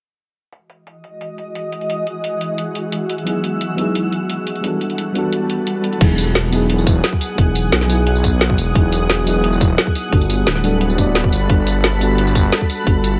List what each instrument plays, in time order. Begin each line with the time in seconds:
0.52 ambient pad E3 G#3 F#4 D#5, closed hi-hat
0.70 closed hi-hat
0.87 closed hi-hat
1.04 closed hi-hat
1.21 closed hi-hat
1.38 closed hi-hat
1.55 closed hi-hat
1.72 closed hi-hat
1.81 closed hi-hat
1.90 closed hi-hat
2.07 closed hi-hat
2.24 closed hi-hat
2.41 closed hi-hat
2.58 ambient pad E6, closed hi-hat
2.75 closed hi-hat
2.92 closed hi-hat
3.10 closed hi-hat
3.18 closed hi-hat
3.24 fm electric piano F#3 B3 D#4, closed hi-hat
3.28 fm electric piano E4 G#4
3.44 closed hi-hat
3.61 closed hi-hat
3.75 fm electric piano F#3 B3 D#4, closed hi-hat
3.80 fm electric piano E4 G#4
3.95 closed hi-hat
4.12 closed hi-hat
4.30 closed hi-hat
4.47 closed hi-hat
4.56 closed hi-hat
4.61 fm electric piano G3 B3 D4, ambient pad G3 B3 A4, closed hi-hat
4.65 fm electric piano F#4 A4
4.81 closed hi-hat
4.90 closed hi-hat
4.98 closed hi-hat
5.12 fm electric piano G3 B3 D4, closed hi-hat
5.17 fm electric piano F#4 A4
5.33 closed hi-hat
5.50 closed hi-hat
5.67 closed hi-hat
5.84 closed hi-hat
5.93 closed hi-hat
5.98 detuned saw bass E1, fm electric piano F#3 B3 D#4, ambient pad G#4 F#5 D#6, kick, closed hi-hat, crash
6.03 fm electric piano E4 G#4
6.18 closed hi-hat, tambourine
6.35 snare, closed hi-hat
6.49 fm electric piano F#3 B3 D#4, closed hi-hat, tambourine
6.54 fm electric piano E4 G#4
6.70 closed hi-hat
6.78 tambourine
6.87 kick, closed hi-hat, tambourine
7.04 snare, closed hi-hat
7.13 kick
7.21 closed hi-hat, tambourine
7.35 detuned saw bass E1, fm electric piano F#3 B3 D#4, kick, closed hi-hat
7.40 fm electric piano E4 G#4
7.55 closed hi-hat, tambourine
7.72 detuned saw bass B1, snare, closed hi-hat
7.81 snare
7.86 fm electric piano F#3 B3 D#4, closed hi-hat, tambourine
7.91 fm electric piano E4 G#4
8.07 closed hi-hat
8.16 tambourine
8.24 kick, closed hi-hat, tambourine
8.41 snare, closed hi-hat
8.50 kick
8.58 detuned saw bass E1, closed hi-hat, tambourine
8.72 detuned saw bass E1, fm electric piano F#3 B3 D#4, kick, closed hi-hat
8.77 fm electric piano E4 G#4
8.92 closed hi-hat, tambourine
9.10 snare, closed hi-hat
9.24 fm electric piano F#3 B3 D#4, closed hi-hat, tambourine
9.28 fm electric piano E4 G#4
9.44 closed hi-hat
9.53 tambourine
9.61 kick, closed hi-hat, tambourine
9.78 snare, closed hi-hat
9.87 kick
9.95 closed hi-hat, tambourine
10.09 detuned saw bass G1, fm electric piano G3 B3 D4, ambient pad A4 B5, kick, closed hi-hat
10.14 fm electric piano F#4 A4
10.21 closed hi-hat, tambourine
10.30 closed hi-hat, tambourine
10.47 detuned saw bass D1, snare, closed hi-hat
10.56 snare
10.62 fm electric piano G3 B3 D4 F#4 A4, closed hi-hat, tambourine
10.81 closed hi-hat
10.90 tambourine
10.95 fm electric piano G3 B3 D4, kick, closed hi-hat, tambourine
11.00 fm electric piano F#4 D5
11.15 snare, closed hi-hat
11.24 kick
11.32 detuned saw bass G1, closed hi-hat, tambourine
11.47 detuned saw bass G1, fm electric piano G3 B3 D4, kick, closed hi-hat
11.51 fm electric piano F#4 A4
11.67 closed hi-hat, tambourine
11.84 snare, closed hi-hat
11.98 fm electric piano G3 B3 D4, closed hi-hat, tambourine
12.03 fm electric piano F#4 A4
12.18 closed hi-hat
12.27 tambourine
12.35 kick, closed hi-hat, tambourine
12.52 snare, closed hi-hat
12.61 kick
12.70 closed hi-hat, tambourine
12.84 detuned saw bass G1, fm electric piano G3 B3 D4, kick, closed hi-hat
12.88 fm electric piano F#4 A4
13.04 closed hi-hat, tambourine